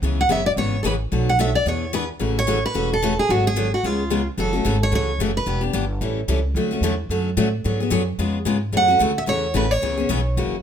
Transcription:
0.02 C#2 C#3 E3 B3 C#4 G#4
0.21 F#5
0.29 F#1 C#3 E3 B3 C#4 G#4 E5
0.46 D5
0.56 G#1 C#3 E3 B3 C#4 G#4 C#5
0.83 A1 C#3 E3 B3 C#4 G#4 A4 B4
1.12 B1 B2 F#3 A3 D4 F#4
1.29 F#5
1.39 B2 F#3 A3 D4 F#4 E5
1.55 D5
1.66 E2 E3 B3 D4 G#4 C#5
1.93 E3 B3 D4 G#4 B4
2.19 A1 C#3 E3 A3 C#4 F#4
2.39 C#5
2.47 C#3 E3 A3 C#4 F#4
2.66 B4
2.74 E1 C#3 E3 A3 C#4 F#4
2.93 A4
3.02 C#3 E3 A3 C#4 F#4
3.19 G#4
3.29 G#1 D3 F#3 B3 F#4 G#4
3.47 G#4
3.56 D3 F#3 B3 F#4 G#4
3.74 F#4
3.83 C#2 C#3 G#3 B3 F4 G#4
4.10 C#3 G#3 B3 F4 G#4
4.37 F#1 C#3 E3 A3 C#4 F#4 A4
4.53 A3 C#4 F#4
4.65 G#1 C#3 E3 A3 C#4 F#4
4.83 C#5
4.92 C#2 C#3 E3 A3 C#4 F#4 C#5
5.18 F#1 C#3 E3 A3 C#4 F#4
5.37 B4
5.46 E1 E3 B3 D4 G4
5.61 B3 D4 G4
5.73 G1 E3 B3 D4 G4
6.01 A1 E3 G3 C#4 E4 A4
6.28 C#2 E3 G3 C#4 E4 A4
6.54 D2 D3 F#3 A3 C#4 F#4
6.71 A3 C#4 F#4
6.81 E2 D3 F#3 A3 C#4 F#4
7.09 F#2 D3 F#3 A3 C#4 F#4
7.37 A2 D3 F#3 A3 C#4 F#4
7.64 G#2 D3 F#3 B3 F#4 G#4
7.80 B3 F#4 G#4
7.90 F#2 D3 F#3 B3 F#4 G#4
8.18 F2 C#3 G#3 B3 F4 G#4
8.45 G#2 C#3 G#3 B3 F4 G#4
8.72 F#2 C#3 E3 A3 C#4 F#4
8.77 F#5
8.88 A3 C#4 F#4
8.99 D2 C#3 E3 A3 C#4 F#4
9.18 E5
9.26 E2 C#3 E3 A3 C#4 F#4 C#5
9.54 A1 C#3 E3 A3 C#4 F#4 B4
9.71 C#5
9.82 C#2 C#3 E3 B3 C#4 G#4
9.98 B3 C#4 G#4
10.09 B1 C#3 E3 B3 C#4 G#4
10.37 F#1 C#3 E3 A#3 C#4 F#4

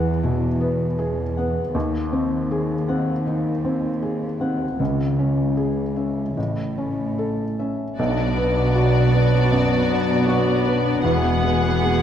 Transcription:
Already playing: E2 E3 F#3 B3 F#4 G#4 F#5
0.23 B2 E4
0.60 B3
0.99 G#4
1.37 B3 F#5
1.74 D#2 D#3
2.12 C4
2.50 G#4
2.88 C4 F#5
3.26 D#3 D#4
3.65 C4
4.02 G#4
4.41 C4 F#5
4.79 C#2 C#3
5.18 C#4
5.57 G#4
5.96 C#4 E5
6.37 A1 A2
6.78 C#4
7.18 A4
7.59 C#4 E5
7.97 B1 B2 F#3 B3 D4 F#4 D5
8.18 B3
8.37 B3 F#4
8.57 D5
8.75 F#4 F#5
8.95 D5
9.14 B3 F#4
9.33 D4
9.51 F#2 F#3
9.71 B3
9.90 B3 F#4
10.10 D5
10.27 F#4 F#5
10.48 D5
10.66 B3 F#4
10.87 D4
11.03 E1 E2 E3 G#3 F#4 G#4 F#5
11.25 B3
11.43 B3 G#4
11.62 F#5
11.81 G#4 G#5

